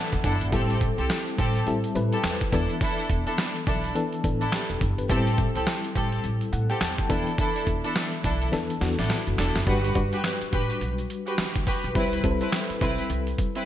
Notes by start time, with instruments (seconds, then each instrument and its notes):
Already playing: fm electric piano E3 B3 D4 A4 F#5
0.12 upright bass E1, kick, closed hi-hat
0.24 upright bass F#1, string section D4 E4 A4, kick, closed hi-hat
0.41 upright bass G1, closed hi-hat
0.52 upright bass A1, fm electric piano G3 B3 E4 A4, string section C4 G4 A4, kick, closed hi-hat
0.59 fm electric piano C4
0.70 closed hi-hat
0.81 kick, closed hi-hat
0.98 upright bass C2, string section C4 G4 A4, closed hi-hat
1.10 snare, closed hi-hat
1.27 closed hi-hat
1.38 upright bass A1, string section C4 G4 A4, kick, closed hi-hat
1.55 closed hi-hat
1.66 upright bass A1, fm electric piano G3 C4 E4 A4, closed hi-hat
1.84 closed hi-hat
1.95 upright bass A2, fm electric piano G3 C4 E4 B4, closed hi-hat
2.12 string section C4 G4 A4, closed hi-hat
2.24 upright bass E2, snare, closed hi-hat
2.41 kick, closed hi-hat
2.52 upright bass E1, fm electric piano E3 B3 D4 A4, string section D4 E4 A4, kick, closed hi-hat
2.70 closed hi-hat
2.81 string section D4 E4 A4, kick, closed hi-hat
2.98 closed hi-hat
3.10 upright bass E1, kick, closed hi-hat
3.26 string section D4 E4 A4, closed hi-hat
3.38 snare, closed hi-hat
3.56 closed hi-hat
3.66 upright bass B1, string section D4 E4 A4, kick, closed hi-hat
3.84 closed hi-hat
3.95 fm electric piano E3 B3 D4 A4, closed hi-hat
4.13 closed hi-hat
4.24 upright bass A1, fm electric piano E3 B3 D4 A4, kick, closed hi-hat
4.41 string section D4 E4 A4, closed hi-hat
4.52 fm electric piano G4, snare, closed hi-hat
4.70 upright bass E1, fm electric piano A4, closed hi-hat
4.81 upright bass F#1, kick, closed hi-hat
4.98 upright bass G1, fm electric piano B4, closed hi-hat
5.09 upright bass A1, fm electric piano G3 B3 E4 A4, string section C4 G4 A4, kick, closed hi-hat
5.16 fm electric piano C4
5.27 closed hi-hat
5.38 kick, closed hi-hat
5.55 upright bass C2, string section C4 G4 A4, closed hi-hat
5.67 snare, closed hi-hat
5.84 closed hi-hat
5.95 upright bass A1, string section C4 G4 A4, kick, closed hi-hat
6.12 closed hi-hat
6.24 upright bass A1, closed hi-hat
6.41 closed hi-hat
6.53 upright bass A2, fm electric piano F#5, closed hi-hat
6.69 string section C4 G4 A4, fm electric piano G5, closed hi-hat
6.81 upright bass E2, fm electric piano A5, snare, closed hi-hat
6.98 fm electric piano G5, kick, closed hi-hat
7.09 upright bass E1, fm electric piano E3 B3 D4 A4, string section D4 E4 A4, kick, closed hi-hat
7.27 closed hi-hat
7.38 string section D4 E4 A4, kick, closed hi-hat
7.56 closed hi-hat
7.67 upright bass E1, kick, closed hi-hat
7.84 string section D4 E4 A4, closed hi-hat
7.95 snare, closed hi-hat
8.13 closed hi-hat
8.24 upright bass B1, string section D4 E4 A4, kick, closed hi-hat
8.41 closed hi-hat
8.52 upright bass E2, fm electric piano E3 B3 D4 A4, snare, closed hi-hat
8.70 closed hi-hat
8.80 upright bass E2, fm electric piano E3 B3 D4 F#4, snare, closed hi-hat
8.98 upright bass A1, string section D4 E4 A4, snare, closed hi-hat
9.10 snare, closed hi-hat
9.27 upright bass F#1, closed hi-hat
9.38 upright bass E1, string section D4 E4 A4, snare, closed hi-hat
9.55 upright bass F#1, snare, closed hi-hat
9.66 upright bass G1, fm electric piano G3 D4 F#4 B4, string section F#4 G4 B4, kick, closed hi-hat
9.84 closed hi-hat
9.95 upright bass G1, fm electric piano G3 D4 F#4 B4, kick, closed hi-hat
10.12 string section F#4 G4 B4, closed hi-hat
10.24 snare, closed hi-hat
10.41 muted upright bass stroke, closed hi-hat
10.52 upright bass A1, string section F#4 G4 B4, kick, closed hi-hat
10.70 closed hi-hat
10.81 upright bass B1, closed hi-hat
10.98 closed hi-hat
11.10 closed hi-hat
11.27 string section F#4 G4 B4, closed hi-hat
11.38 muted upright bass stroke, snare, closed hi-hat
11.55 upright bass D2, kick, closed hi-hat
11.66 string section F#4 G4 B4, kick, open hi-hat
11.84 upright bass B1, closed hi-hat
11.95 upright bass C2, fm electric piano G3 C4 E4 B4, string section C4 E4 B4, kick, closed hi-hat
12.13 closed hi-hat
12.23 upright bass C2, fm electric piano G3 C4 E4 A4, kick, closed hi-hat
12.31 fm electric piano B4
12.41 string section C4 E4 B4, closed hi-hat
12.52 snare, closed hi-hat
12.70 muted upright bass stroke, closed hi-hat
12.81 upright bass B1, string section C4 E4 B4, kick, closed hi-hat
12.98 closed hi-hat
13.10 upright bass C2, closed hi-hat
13.27 closed hi-hat
13.38 kick, closed hi-hat
13.55 string section C4 E4 B4, closed hi-hat